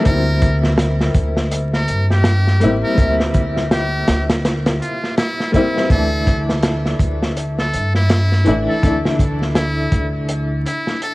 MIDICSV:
0, 0, Header, 1, 5, 480
1, 0, Start_track
1, 0, Tempo, 731707
1, 36, Time_signature, 4, 2, 24, 8
1, 7310, End_track
2, 0, Start_track
2, 0, Title_t, "Muted trumpet"
2, 0, Program_c, 0, 59
2, 39, Note_on_c, 0, 70, 101
2, 376, Note_off_c, 0, 70, 0
2, 1146, Note_on_c, 0, 70, 87
2, 1353, Note_off_c, 0, 70, 0
2, 1386, Note_on_c, 0, 67, 94
2, 1805, Note_off_c, 0, 67, 0
2, 1859, Note_on_c, 0, 70, 88
2, 2070, Note_off_c, 0, 70, 0
2, 2443, Note_on_c, 0, 67, 95
2, 2778, Note_off_c, 0, 67, 0
2, 3156, Note_on_c, 0, 65, 80
2, 3376, Note_off_c, 0, 65, 0
2, 3395, Note_on_c, 0, 64, 97
2, 3616, Note_off_c, 0, 64, 0
2, 3635, Note_on_c, 0, 64, 85
2, 3855, Note_off_c, 0, 64, 0
2, 3880, Note_on_c, 0, 69, 108
2, 4217, Note_off_c, 0, 69, 0
2, 4984, Note_on_c, 0, 69, 88
2, 5193, Note_off_c, 0, 69, 0
2, 5220, Note_on_c, 0, 64, 103
2, 5642, Note_off_c, 0, 64, 0
2, 5699, Note_on_c, 0, 69, 83
2, 5910, Note_off_c, 0, 69, 0
2, 6271, Note_on_c, 0, 64, 91
2, 6612, Note_off_c, 0, 64, 0
2, 6997, Note_on_c, 0, 64, 86
2, 7217, Note_off_c, 0, 64, 0
2, 7237, Note_on_c, 0, 69, 93
2, 7310, Note_off_c, 0, 69, 0
2, 7310, End_track
3, 0, Start_track
3, 0, Title_t, "Upright piano"
3, 0, Program_c, 1, 0
3, 0, Control_c, 1, 64, 127
3, 5, Note_on_c, 1, 55, 79
3, 21, Note_on_c, 1, 58, 71
3, 37, Note_on_c, 1, 60, 76
3, 45, Control_c, 1, 64, 0
3, 57, Note_on_c, 1, 64, 88
3, 143, Control_c, 1, 64, 127
3, 1677, Note_off_c, 1, 55, 0
3, 1685, Note_off_c, 1, 58, 0
3, 1693, Note_off_c, 1, 60, 0
3, 1703, Note_off_c, 1, 64, 0
3, 1704, Note_on_c, 1, 55, 93
3, 1710, Note_on_c, 1, 58, 92
3, 1721, Note_on_c, 1, 60, 89
3, 1727, Note_on_c, 1, 64, 114
3, 1921, Note_off_c, 1, 55, 0
3, 1929, Note_off_c, 1, 58, 0
3, 1931, Note_on_c, 1, 55, 78
3, 1935, Note_off_c, 1, 60, 0
3, 1938, Note_off_c, 1, 64, 0
3, 1945, Note_on_c, 1, 58, 74
3, 1963, Note_on_c, 1, 60, 72
3, 1978, Note_on_c, 1, 76, 85
3, 3600, Note_off_c, 1, 55, 0
3, 3607, Note_off_c, 1, 58, 0
3, 3616, Note_off_c, 1, 60, 0
3, 3621, Note_on_c, 1, 55, 100
3, 3623, Note_off_c, 1, 76, 0
3, 3627, Note_on_c, 1, 58, 90
3, 3640, Note_on_c, 1, 60, 93
3, 3647, Note_on_c, 1, 64, 110
3, 3844, Note_off_c, 1, 55, 0
3, 3848, Note_off_c, 1, 58, 0
3, 3854, Note_off_c, 1, 60, 0
3, 3854, Note_on_c, 1, 52, 78
3, 3857, Note_off_c, 1, 64, 0
3, 3869, Note_on_c, 1, 57, 74
3, 3885, Control_c, 1, 64, 0
3, 3887, Note_on_c, 1, 62, 74
3, 3904, Note_on_c, 1, 64, 88
3, 4007, Control_c, 1, 64, 127
3, 5521, Note_off_c, 1, 52, 0
3, 5529, Note_off_c, 1, 57, 0
3, 5538, Note_off_c, 1, 62, 0
3, 5541, Note_on_c, 1, 52, 101
3, 5546, Note_off_c, 1, 64, 0
3, 5550, Note_on_c, 1, 57, 92
3, 5560, Note_on_c, 1, 62, 89
3, 5567, Note_on_c, 1, 64, 109
3, 5757, Note_off_c, 1, 52, 0
3, 5767, Note_on_c, 1, 52, 73
3, 5769, Note_off_c, 1, 57, 0
3, 5774, Note_off_c, 1, 62, 0
3, 5778, Note_off_c, 1, 64, 0
3, 5781, Note_on_c, 1, 57, 70
3, 5801, Note_on_c, 1, 62, 76
3, 5816, Note_on_c, 1, 64, 85
3, 7310, Note_off_c, 1, 52, 0
3, 7310, Note_off_c, 1, 57, 0
3, 7310, Note_off_c, 1, 62, 0
3, 7310, Note_off_c, 1, 64, 0
3, 7310, End_track
4, 0, Start_track
4, 0, Title_t, "Upright bass"
4, 0, Program_c, 2, 32
4, 41, Note_on_c, 2, 38, 99
4, 739, Note_off_c, 2, 38, 0
4, 756, Note_on_c, 2, 38, 102
4, 1217, Note_off_c, 2, 38, 0
4, 1243, Note_on_c, 2, 43, 87
4, 1701, Note_off_c, 2, 43, 0
4, 1725, Note_on_c, 2, 33, 94
4, 1844, Note_off_c, 2, 33, 0
4, 1958, Note_on_c, 2, 38, 100
4, 2658, Note_off_c, 2, 38, 0
4, 2679, Note_on_c, 2, 38, 99
4, 3139, Note_off_c, 2, 38, 0
4, 3875, Note_on_c, 2, 38, 99
4, 4576, Note_off_c, 2, 38, 0
4, 4590, Note_on_c, 2, 38, 92
4, 5054, Note_off_c, 2, 38, 0
4, 5081, Note_on_c, 2, 43, 84
4, 5539, Note_off_c, 2, 43, 0
4, 5557, Note_on_c, 2, 33, 103
4, 5681, Note_off_c, 2, 33, 0
4, 5797, Note_on_c, 2, 38, 102
4, 6497, Note_off_c, 2, 38, 0
4, 6510, Note_on_c, 2, 38, 95
4, 6974, Note_off_c, 2, 38, 0
4, 7310, End_track
5, 0, Start_track
5, 0, Title_t, "Drums"
5, 35, Note_on_c, 9, 42, 84
5, 40, Note_on_c, 9, 36, 96
5, 100, Note_off_c, 9, 42, 0
5, 105, Note_off_c, 9, 36, 0
5, 275, Note_on_c, 9, 42, 63
5, 278, Note_on_c, 9, 36, 98
5, 340, Note_off_c, 9, 42, 0
5, 344, Note_off_c, 9, 36, 0
5, 419, Note_on_c, 9, 38, 53
5, 484, Note_off_c, 9, 38, 0
5, 511, Note_on_c, 9, 38, 117
5, 520, Note_on_c, 9, 42, 85
5, 577, Note_off_c, 9, 38, 0
5, 585, Note_off_c, 9, 42, 0
5, 662, Note_on_c, 9, 38, 58
5, 728, Note_off_c, 9, 38, 0
5, 751, Note_on_c, 9, 42, 64
5, 753, Note_on_c, 9, 36, 103
5, 817, Note_off_c, 9, 42, 0
5, 819, Note_off_c, 9, 36, 0
5, 898, Note_on_c, 9, 38, 56
5, 963, Note_off_c, 9, 38, 0
5, 994, Note_on_c, 9, 42, 95
5, 1059, Note_off_c, 9, 42, 0
5, 1139, Note_on_c, 9, 38, 41
5, 1204, Note_off_c, 9, 38, 0
5, 1232, Note_on_c, 9, 42, 62
5, 1298, Note_off_c, 9, 42, 0
5, 1381, Note_on_c, 9, 38, 41
5, 1446, Note_off_c, 9, 38, 0
5, 1468, Note_on_c, 9, 38, 114
5, 1473, Note_on_c, 9, 42, 88
5, 1534, Note_off_c, 9, 38, 0
5, 1539, Note_off_c, 9, 42, 0
5, 1621, Note_on_c, 9, 38, 37
5, 1687, Note_off_c, 9, 38, 0
5, 1711, Note_on_c, 9, 42, 69
5, 1776, Note_off_c, 9, 42, 0
5, 1952, Note_on_c, 9, 36, 110
5, 1952, Note_on_c, 9, 42, 76
5, 2017, Note_off_c, 9, 36, 0
5, 2017, Note_off_c, 9, 42, 0
5, 2098, Note_on_c, 9, 38, 53
5, 2164, Note_off_c, 9, 38, 0
5, 2189, Note_on_c, 9, 42, 60
5, 2193, Note_on_c, 9, 36, 102
5, 2254, Note_off_c, 9, 42, 0
5, 2259, Note_off_c, 9, 36, 0
5, 2339, Note_on_c, 9, 38, 43
5, 2405, Note_off_c, 9, 38, 0
5, 2434, Note_on_c, 9, 38, 111
5, 2436, Note_on_c, 9, 42, 92
5, 2499, Note_off_c, 9, 38, 0
5, 2501, Note_off_c, 9, 42, 0
5, 2672, Note_on_c, 9, 42, 86
5, 2674, Note_on_c, 9, 38, 113
5, 2738, Note_off_c, 9, 42, 0
5, 2740, Note_off_c, 9, 38, 0
5, 2816, Note_on_c, 9, 38, 113
5, 2816, Note_on_c, 9, 42, 77
5, 2882, Note_off_c, 9, 38, 0
5, 2882, Note_off_c, 9, 42, 0
5, 2916, Note_on_c, 9, 42, 84
5, 2917, Note_on_c, 9, 38, 101
5, 2982, Note_off_c, 9, 38, 0
5, 2982, Note_off_c, 9, 42, 0
5, 3055, Note_on_c, 9, 42, 72
5, 3057, Note_on_c, 9, 38, 113
5, 3120, Note_off_c, 9, 42, 0
5, 3123, Note_off_c, 9, 38, 0
5, 3161, Note_on_c, 9, 42, 67
5, 3227, Note_off_c, 9, 42, 0
5, 3303, Note_on_c, 9, 38, 33
5, 3368, Note_off_c, 9, 38, 0
5, 3394, Note_on_c, 9, 42, 79
5, 3396, Note_on_c, 9, 38, 111
5, 3459, Note_off_c, 9, 42, 0
5, 3462, Note_off_c, 9, 38, 0
5, 3544, Note_on_c, 9, 38, 45
5, 3609, Note_off_c, 9, 38, 0
5, 3634, Note_on_c, 9, 36, 87
5, 3635, Note_on_c, 9, 42, 56
5, 3700, Note_off_c, 9, 36, 0
5, 3700, Note_off_c, 9, 42, 0
5, 3787, Note_on_c, 9, 38, 52
5, 3853, Note_off_c, 9, 38, 0
5, 3870, Note_on_c, 9, 36, 101
5, 3871, Note_on_c, 9, 42, 74
5, 3936, Note_off_c, 9, 36, 0
5, 3936, Note_off_c, 9, 42, 0
5, 4113, Note_on_c, 9, 36, 105
5, 4113, Note_on_c, 9, 42, 74
5, 4179, Note_off_c, 9, 36, 0
5, 4179, Note_off_c, 9, 42, 0
5, 4260, Note_on_c, 9, 38, 54
5, 4326, Note_off_c, 9, 38, 0
5, 4346, Note_on_c, 9, 42, 86
5, 4351, Note_on_c, 9, 38, 111
5, 4412, Note_off_c, 9, 42, 0
5, 4417, Note_off_c, 9, 38, 0
5, 4498, Note_on_c, 9, 38, 46
5, 4564, Note_off_c, 9, 38, 0
5, 4588, Note_on_c, 9, 36, 95
5, 4592, Note_on_c, 9, 42, 67
5, 4654, Note_off_c, 9, 36, 0
5, 4658, Note_off_c, 9, 42, 0
5, 4740, Note_on_c, 9, 38, 56
5, 4806, Note_off_c, 9, 38, 0
5, 4833, Note_on_c, 9, 42, 88
5, 4899, Note_off_c, 9, 42, 0
5, 4976, Note_on_c, 9, 38, 43
5, 5042, Note_off_c, 9, 38, 0
5, 5074, Note_on_c, 9, 42, 69
5, 5140, Note_off_c, 9, 42, 0
5, 5214, Note_on_c, 9, 38, 38
5, 5279, Note_off_c, 9, 38, 0
5, 5311, Note_on_c, 9, 42, 76
5, 5316, Note_on_c, 9, 38, 115
5, 5376, Note_off_c, 9, 42, 0
5, 5381, Note_off_c, 9, 38, 0
5, 5459, Note_on_c, 9, 38, 37
5, 5525, Note_off_c, 9, 38, 0
5, 5548, Note_on_c, 9, 42, 69
5, 5614, Note_off_c, 9, 42, 0
5, 5794, Note_on_c, 9, 36, 95
5, 5794, Note_on_c, 9, 42, 77
5, 5860, Note_off_c, 9, 36, 0
5, 5860, Note_off_c, 9, 42, 0
5, 5939, Note_on_c, 9, 38, 57
5, 6005, Note_off_c, 9, 38, 0
5, 6030, Note_on_c, 9, 36, 101
5, 6033, Note_on_c, 9, 42, 63
5, 6096, Note_off_c, 9, 36, 0
5, 6099, Note_off_c, 9, 42, 0
5, 6179, Note_on_c, 9, 38, 36
5, 6244, Note_off_c, 9, 38, 0
5, 6266, Note_on_c, 9, 42, 87
5, 6267, Note_on_c, 9, 38, 106
5, 6332, Note_off_c, 9, 42, 0
5, 6333, Note_off_c, 9, 38, 0
5, 6507, Note_on_c, 9, 42, 70
5, 6509, Note_on_c, 9, 36, 99
5, 6573, Note_off_c, 9, 42, 0
5, 6574, Note_off_c, 9, 36, 0
5, 6748, Note_on_c, 9, 42, 92
5, 6814, Note_off_c, 9, 42, 0
5, 6994, Note_on_c, 9, 42, 75
5, 7059, Note_off_c, 9, 42, 0
5, 7130, Note_on_c, 9, 38, 37
5, 7196, Note_off_c, 9, 38, 0
5, 7226, Note_on_c, 9, 42, 76
5, 7291, Note_off_c, 9, 42, 0
5, 7310, End_track
0, 0, End_of_file